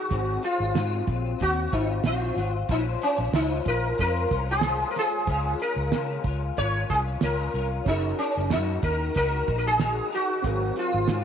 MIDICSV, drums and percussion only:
0, 0, Header, 1, 2, 480
1, 0, Start_track
1, 0, Key_signature, -5, "major"
1, 0, Tempo, 645925
1, 80, Time_signature, 4, 2, 24, 8
1, 8354, End_track
2, 0, Start_track
2, 0, Title_t, "Drums"
2, 82, Note_on_c, 9, 36, 107
2, 86, Note_on_c, 9, 42, 97
2, 156, Note_off_c, 9, 36, 0
2, 161, Note_off_c, 9, 42, 0
2, 319, Note_on_c, 9, 42, 76
2, 394, Note_off_c, 9, 42, 0
2, 560, Note_on_c, 9, 38, 95
2, 563, Note_on_c, 9, 42, 95
2, 635, Note_off_c, 9, 38, 0
2, 637, Note_off_c, 9, 42, 0
2, 794, Note_on_c, 9, 42, 76
2, 800, Note_on_c, 9, 36, 100
2, 869, Note_off_c, 9, 42, 0
2, 874, Note_off_c, 9, 36, 0
2, 1039, Note_on_c, 9, 42, 80
2, 1048, Note_on_c, 9, 36, 81
2, 1114, Note_off_c, 9, 42, 0
2, 1122, Note_off_c, 9, 36, 0
2, 1286, Note_on_c, 9, 36, 89
2, 1286, Note_on_c, 9, 42, 62
2, 1360, Note_off_c, 9, 36, 0
2, 1361, Note_off_c, 9, 42, 0
2, 1514, Note_on_c, 9, 38, 101
2, 1524, Note_on_c, 9, 42, 75
2, 1588, Note_off_c, 9, 38, 0
2, 1598, Note_off_c, 9, 42, 0
2, 1765, Note_on_c, 9, 42, 71
2, 1769, Note_on_c, 9, 38, 33
2, 1839, Note_off_c, 9, 42, 0
2, 1843, Note_off_c, 9, 38, 0
2, 1997, Note_on_c, 9, 42, 94
2, 2001, Note_on_c, 9, 36, 107
2, 2072, Note_off_c, 9, 42, 0
2, 2075, Note_off_c, 9, 36, 0
2, 2241, Note_on_c, 9, 42, 82
2, 2315, Note_off_c, 9, 42, 0
2, 2478, Note_on_c, 9, 38, 105
2, 2481, Note_on_c, 9, 42, 91
2, 2552, Note_off_c, 9, 38, 0
2, 2555, Note_off_c, 9, 42, 0
2, 2713, Note_on_c, 9, 42, 77
2, 2720, Note_on_c, 9, 36, 92
2, 2787, Note_off_c, 9, 42, 0
2, 2794, Note_off_c, 9, 36, 0
2, 2957, Note_on_c, 9, 42, 74
2, 2967, Note_on_c, 9, 36, 91
2, 3031, Note_off_c, 9, 42, 0
2, 3041, Note_off_c, 9, 36, 0
2, 3199, Note_on_c, 9, 42, 64
2, 3204, Note_on_c, 9, 36, 92
2, 3273, Note_off_c, 9, 42, 0
2, 3278, Note_off_c, 9, 36, 0
2, 3428, Note_on_c, 9, 38, 101
2, 3438, Note_on_c, 9, 42, 74
2, 3502, Note_off_c, 9, 38, 0
2, 3512, Note_off_c, 9, 42, 0
2, 3682, Note_on_c, 9, 42, 74
2, 3686, Note_on_c, 9, 38, 34
2, 3756, Note_off_c, 9, 42, 0
2, 3760, Note_off_c, 9, 38, 0
2, 3919, Note_on_c, 9, 36, 109
2, 3920, Note_on_c, 9, 42, 97
2, 3993, Note_off_c, 9, 36, 0
2, 3995, Note_off_c, 9, 42, 0
2, 4159, Note_on_c, 9, 42, 80
2, 4233, Note_off_c, 9, 42, 0
2, 4399, Note_on_c, 9, 38, 100
2, 4402, Note_on_c, 9, 42, 91
2, 4473, Note_off_c, 9, 38, 0
2, 4476, Note_off_c, 9, 42, 0
2, 4636, Note_on_c, 9, 42, 76
2, 4640, Note_on_c, 9, 36, 94
2, 4711, Note_off_c, 9, 42, 0
2, 4714, Note_off_c, 9, 36, 0
2, 4882, Note_on_c, 9, 42, 79
2, 4890, Note_on_c, 9, 36, 81
2, 4956, Note_off_c, 9, 42, 0
2, 4964, Note_off_c, 9, 36, 0
2, 5127, Note_on_c, 9, 36, 89
2, 5129, Note_on_c, 9, 42, 61
2, 5202, Note_off_c, 9, 36, 0
2, 5203, Note_off_c, 9, 42, 0
2, 5358, Note_on_c, 9, 38, 101
2, 5367, Note_on_c, 9, 42, 79
2, 5432, Note_off_c, 9, 38, 0
2, 5442, Note_off_c, 9, 42, 0
2, 5606, Note_on_c, 9, 42, 68
2, 5680, Note_off_c, 9, 42, 0
2, 5841, Note_on_c, 9, 42, 88
2, 5842, Note_on_c, 9, 36, 101
2, 5915, Note_off_c, 9, 42, 0
2, 5916, Note_off_c, 9, 36, 0
2, 6083, Note_on_c, 9, 42, 81
2, 6157, Note_off_c, 9, 42, 0
2, 6320, Note_on_c, 9, 38, 95
2, 6322, Note_on_c, 9, 42, 92
2, 6394, Note_off_c, 9, 38, 0
2, 6397, Note_off_c, 9, 42, 0
2, 6559, Note_on_c, 9, 42, 81
2, 6561, Note_on_c, 9, 36, 91
2, 6633, Note_off_c, 9, 42, 0
2, 6636, Note_off_c, 9, 36, 0
2, 6795, Note_on_c, 9, 42, 82
2, 6807, Note_on_c, 9, 36, 81
2, 6869, Note_off_c, 9, 42, 0
2, 6881, Note_off_c, 9, 36, 0
2, 7045, Note_on_c, 9, 36, 90
2, 7045, Note_on_c, 9, 42, 69
2, 7119, Note_off_c, 9, 36, 0
2, 7119, Note_off_c, 9, 42, 0
2, 7278, Note_on_c, 9, 38, 94
2, 7288, Note_on_c, 9, 42, 69
2, 7353, Note_off_c, 9, 38, 0
2, 7363, Note_off_c, 9, 42, 0
2, 7523, Note_on_c, 9, 42, 71
2, 7598, Note_off_c, 9, 42, 0
2, 7759, Note_on_c, 9, 36, 107
2, 7762, Note_on_c, 9, 42, 96
2, 7834, Note_off_c, 9, 36, 0
2, 7836, Note_off_c, 9, 42, 0
2, 7995, Note_on_c, 9, 42, 76
2, 8070, Note_off_c, 9, 42, 0
2, 8231, Note_on_c, 9, 38, 97
2, 8234, Note_on_c, 9, 42, 90
2, 8305, Note_off_c, 9, 38, 0
2, 8308, Note_off_c, 9, 42, 0
2, 8354, End_track
0, 0, End_of_file